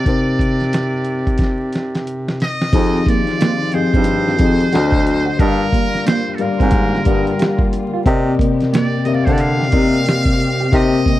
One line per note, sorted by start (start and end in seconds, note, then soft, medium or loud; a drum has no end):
0.00 2.07 D5 medium
0.04 2.68 C3 medium
0.04 2.43 C3 medium
0.04 2.68 C4 medium
0.04 2.69 D#4 medium
0.04 2.69 A#4 medium
0.04 kick medium
0.04 closed hi-hat medium
0.09 2.70 C5 medium
0.39 kick medium
0.39 closed hi-hat medium
0.60 snare soft
0.60 closed hi-hat soft
0.73 snare medium
0.73 closed hi-hat medium
1.05 closed hi-hat soft
1.27 kick medium
1.27 closed hi-hat soft
1.38 kick medium
1.38 snare soft
1.38 closed hi-hat medium
1.73 snare medium
1.73 closed hi-hat medium
1.95 snare medium
1.95 closed hi-hat soft
2.07 closed hi-hat medium
2.28 snare medium
2.40 3.10 D#5 medium
2.40 snare medium
2.40 closed hi-hat soft
2.62 snare medium
2.62 closed hi-hat soft
2.71 3.01 F2 loud
2.71 4.70 D#3 medium
2.71 4.70 F3 medium
2.71 3.59 F3 medium
2.71 4.70 C4 medium
2.71 3.60 C4 medium
2.71 2.87 C4 medium
2.71 3.60 D#4 medium
2.71 4.70 F4 medium
2.71 3.60 G4 medium
2.71 3.60 G#4 medium
2.71 kick loud
2.71 closed hi-hat medium
2.71 crash medium
3.06 3.21 A#3 medium
3.06 3.76 D5 medium
3.06 kick medium
3.06 closed hi-hat medium
3.27 snare soft
3.27 closed hi-hat soft
3.41 3.54 A#3 medium
3.41 snare loud
3.41 closed hi-hat loud
3.72 3.82 G2 soft
3.72 4.31 F3 medium
3.72 4.31 C4 medium
3.72 4.31 G4 medium
3.72 4.31 G#4 medium
3.72 5.41 C5 medium
3.72 4.32 D#5 medium
3.72 muted clean electric guitar stroke soft
3.72 closed hi-hat medium
3.94 4.42 G2 medium
3.94 4.03 C4 medium
3.94 kick medium
3.94 closed hi-hat soft
4.04 closed hi-hat medium
4.28 snare soft
4.39 4.67 F2 medium
4.39 4.73 F3 medium
4.39 4.73 C4 medium
4.39 4.54 D#4 medium
4.39 4.73 G4 medium
4.39 4.74 G#4 medium
4.39 4.74 D#5 medium
4.39 kick loud
4.39 closed hi-hat medium
4.61 closed hi-hat soft
4.73 5.28 D2 loud
4.73 8.03 D3 medium
4.73 5.31 D3 medium
4.73 5.39 F#3 medium
4.73 5.39 C4 medium
4.73 5.31 D4 medium
4.73 4.86 F#4 medium
4.73 5.31 F#4 medium
4.73 5.32 C5 medium
4.73 5.39 D#5 medium
4.73 5.32 D#5 loud
4.73 snare medium
4.73 closed hi-hat medium
4.92 kick medium
5.06 muted clean electric guitar stroke soft
5.06 closed hi-hat medium
5.26 5.35 F#4 medium
5.38 5.67 G2 loud
5.38 8.03 G3 medium
5.38 6.26 G3 medium
5.38 11.20 A#3 medium
5.38 5.53 D4 medium
5.38 8.03 F4 medium
5.38 6.26 G4 medium
5.38 6.06 A#4 loud
5.38 6.27 A#4 medium
5.38 6.27 D5 medium
5.38 5.48 D#5 medium
5.38 kick loud
5.38 closed hi-hat medium
5.48 6.30 F5 loud
5.73 5.87 A#3 medium
5.73 kick medium
5.73 closed hi-hat medium
5.93 snare soft
5.93 closed hi-hat soft
6.06 6.20 A#3 medium
6.06 6.37 C5 medium
6.06 snare loud
6.06 closed hi-hat loud
6.35 6.43 A4 medium
6.35 closed hi-hat medium
6.39 6.48 G#2 soft
6.39 6.97 G3 medium
6.39 6.97 G4 medium
6.39 6.98 A#4 medium
6.39 7.74 A#4 medium
6.39 6.98 D5 medium
6.39 6.98 F5 medium
6.39 muted clean electric guitar stroke soft
6.60 6.99 G#2 medium
6.60 6.69 C4 medium
6.60 kick medium
6.60 closed hi-hat soft
6.71 kick medium
6.71 closed hi-hat medium
6.95 snare soft
7.05 7.34 G2 medium
7.05 7.92 G3 medium
7.05 7.20 D4 medium
7.05 7.93 G4 medium
7.05 7.93 A#4 medium
7.05 7.93 D5 medium
7.05 7.14 F#5 medium
7.05 kick loud
7.05 closed hi-hat medium
7.14 7.97 G5 medium
7.27 closed hi-hat soft
7.39 7.53 G4 medium
7.39 snare medium
7.39 closed hi-hat medium
7.59 kick medium
7.73 muted clean electric guitar stroke soft
7.73 closed hi-hat medium
7.94 8.02 F4 medium
8.05 11.20 C3 medium
8.05 8.93 C3 loud
8.05 8.34 C3 loud
8.05 11.20 C4 medium
8.05 8.19 C4 medium
8.05 8.93 C4 loud
8.05 11.20 G4 medium
8.05 8.93 A#4 medium
8.05 8.93 D5 loud
8.05 8.94 D#5 loud
8.05 kick loud
8.05 closed hi-hat medium
8.39 8.53 A#3 medium
8.39 kick medium
8.39 closed hi-hat medium
8.61 snare soft
8.61 closed hi-hat soft
8.73 8.86 A#3 medium
8.73 9.06 D5 medium
8.73 snare loud
8.73 closed hi-hat loud
9.05 9.64 C3 medium
9.05 9.15 D3 soft
9.05 9.64 C4 medium
9.05 9.64 A#4 medium
9.05 9.64 D5 medium
9.05 9.15 D#5 medium
9.05 9.15 E5 medium
9.05 muted clean electric guitar stroke soft
9.05 closed hi-hat medium
9.14 9.26 D5 medium
9.14 9.68 F5 medium
9.25 9.66 D3 medium
9.25 9.36 C4 medium
9.25 9.34 C5 medium
9.25 kick medium
9.25 closed hi-hat soft
9.33 9.42 D5 medium
9.38 10.77 F5 loud
9.38 closed hi-hat medium
9.62 snare soft
9.72 10.59 C3 medium
9.72 10.01 C3 medium
9.72 10.59 C4 medium
9.72 9.87 D#4 medium
9.72 10.60 A#4 medium
9.72 10.60 D5 medium
9.72 10.60 D#5 medium
9.72 kick medium
9.72 closed hi-hat medium
9.94 closed hi-hat soft
10.06 10.20 G4 medium
10.06 snare loud
10.06 closed hi-hat medium
10.25 kick medium
10.40 muted clean electric guitar stroke soft
10.40 closed hi-hat medium
10.60 10.69 G4 medium
10.72 11.20 C3 medium
10.72 11.01 C3 loud
10.72 11.20 C4 medium
10.72 10.87 D#4 medium
10.72 11.20 A#4 medium
10.72 11.20 C5 medium
10.72 11.20 D#5 medium
10.72 11.20 D#5 loud
10.72 kick loud
10.72 closed hi-hat medium
11.06 11.20 A#3 medium
11.06 kick medium
11.06 closed hi-hat medium